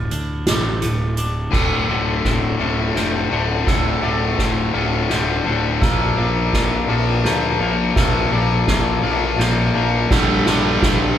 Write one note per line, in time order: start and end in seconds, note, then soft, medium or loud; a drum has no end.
0.00 0.10 D1 medium
0.00 1.19 D2 medium
0.00 0.81 A2 medium
0.00 0.48 F6 medium
0.11 0.46 D2 medium
0.11 1.17 D3 medium
0.11 closed hi-hat medium
0.47 0.81 A1 medium
0.47 1.55 A3 medium
0.47 1.17 D6 medium
0.47 snare loud
0.47 closed hi-hat medium
0.82 1.52 D1 medium
0.82 1.54 A2 medium
0.82 closed hi-hat medium
1.17 1.54 D3 medium
1.17 1.54 D6 medium
1.17 closed hi-hat medium
1.51 1.84 D1 medium
1.51 1.88 D2 medium
1.51 3.33 D2 medium
1.51 1.88 A2 medium
1.51 1.89 D3 medium
1.51 1.90 E6 medium
1.51 kick medium
1.51 snare soft
1.51 crash loud
1.88 2.20 D1 medium
1.88 2.58 D2 medium
1.88 2.58 A2 medium
1.88 2.58 D3 medium
1.88 2.59 A3 medium
1.88 2.61 D6 medium
1.88 ride medium
2.24 2.56 D1 medium
2.24 2.96 C4 soft
2.24 kick medium
2.24 snare soft
2.24 ride medium
2.59 2.91 D1 medium
2.59 2.95 D2 medium
2.59 2.95 A2 medium
2.59 2.95 D3 medium
2.59 4.03 A3 medium
2.59 2.97 F6 medium
2.59 ride medium
2.96 3.27 F1 medium
2.96 3.29 D2 medium
2.96 3.30 A2 medium
2.96 3.30 D3 medium
2.96 4.38 C4 medium
2.96 3.68 G6 medium
2.96 snare medium
2.96 ride medium
3.31 3.63 D1 medium
3.31 3.65 D2 medium
3.31 3.66 A2 medium
3.31 3.67 D3 medium
3.31 5.12 D3 medium
3.31 ride medium
3.67 3.98 D1 medium
3.67 4.02 D2 medium
3.67 5.47 D2 medium
3.67 4.02 A2 medium
3.67 4.02 D3 medium
3.67 4.04 E6 medium
3.67 kick loud
3.67 snare medium
3.67 ride medium
4.02 4.34 D1 medium
4.02 4.72 D2 medium
4.02 4.73 A2 medium
4.02 4.73 D3 medium
4.02 4.74 A3 medium
4.02 4.75 D6 medium
4.02 ride medium
4.38 4.70 D1 medium
4.38 5.11 C4 medium
4.38 kick medium
4.38 snare medium
4.38 ride medium
4.74 5.06 D1 medium
4.74 5.08 D2 medium
4.74 5.09 A2 medium
4.74 5.09 D3 medium
4.74 5.83 A3 medium
4.74 5.11 F6 medium
4.74 ride medium
5.09 5.42 D1 medium
5.09 5.44 D2 medium
5.09 5.45 A2 medium
5.09 5.45 D3 medium
5.09 5.83 C4 medium
5.09 5.82 G6 medium
5.09 snare medium
5.09 ride medium
5.45 5.77 D1 medium
5.45 5.80 D2 medium
5.45 5.80 A2 medium
5.45 5.81 D3 medium
5.45 5.83 D3 medium
5.45 ride medium
5.82 6.13 A#1 medium
5.82 6.17 A#2 medium
5.82 7.97 A#2 medium
5.82 6.17 F3 medium
5.82 6.17 A#3 medium
5.82 6.18 E6 medium
5.82 kick loud
5.82 snare medium
5.82 ride medium
6.17 6.49 A#1 medium
6.17 6.88 A#2 medium
6.17 6.89 F3 medium
6.17 6.89 A#3 loud
6.17 6.89 D4 medium
6.17 6.90 D6 medium
6.17 ride medium
6.53 6.84 A#1 medium
6.53 7.26 F4 medium
6.53 kick medium
6.53 snare medium
6.53 ride medium
6.88 7.21 A#1 medium
6.88 7.25 A#2 medium
6.88 7.25 F3 medium
6.88 7.26 A#3 medium
6.88 8.32 D4 medium
6.88 7.25 F6 medium
6.88 ride loud
7.24 7.55 D2 medium
7.24 7.59 A#2 medium
7.24 7.60 F3 medium
7.24 7.61 A#3 medium
7.24 8.67 F4 medium
7.24 7.97 G6 medium
7.24 snare medium
7.24 ride medium
7.60 7.91 A#1 medium
7.60 7.96 A#2 medium
7.60 7.96 F3 medium
7.60 7.97 A#3 medium
7.60 9.75 A#3 medium
7.60 ride medium
7.96 8.27 A#1 medium
7.96 8.31 A#2 medium
7.96 10.11 A#2 medium
7.96 8.32 F3 medium
7.96 8.32 A#3 loud
7.96 8.33 E6 medium
7.96 kick loud
7.96 snare medium
7.96 ride medium
8.31 8.63 A#1 medium
8.31 9.03 A#2 medium
8.31 9.03 F3 medium
8.31 9.04 A#3 medium
8.31 9.03 D4 medium
8.31 9.04 D6 medium
8.31 ride medium
8.67 8.99 A#1 medium
8.67 9.40 F4 medium
8.67 kick medium
8.67 snare medium
8.67 ride medium
9.03 9.34 A#1 medium
9.03 9.38 A#2 medium
9.03 9.39 F3 medium
9.03 9.39 A#3 medium
9.03 10.46 D4 medium
9.03 9.39 F6 medium
9.03 ride medium
9.38 9.69 A#1 medium
9.38 9.75 A#2 medium
9.38 9.76 F3 medium
9.38 9.76 A#3 medium
9.38 10.14 F4 medium
9.38 10.11 G6 medium
9.38 snare medium
9.38 ride medium
9.75 10.05 A#1 medium
9.75 10.10 A#2 medium
9.75 10.11 F3 medium
9.75 10.46 A#3 medium
9.75 10.11 A#3 medium
9.75 ride medium
10.11 10.41 A#1 medium
10.11 10.45 G2 medium
10.11 11.18 G2 medium
10.11 10.45 D3 medium
10.11 10.46 G3 medium
10.11 10.47 E6 medium
10.11 kick loud
10.11 snare medium
10.11 crash medium
10.46 10.77 A#1 medium
10.46 11.17 G2 medium
10.46 11.17 D3 medium
10.46 11.18 G3 medium
10.46 11.16 A#3 medium
10.46 11.18 D6 medium
10.46 snare medium
10.46 ride medium
10.82 11.13 A#1 medium
10.82 11.18 D4 medium
10.82 kick medium
10.82 snare medium
10.82 ride medium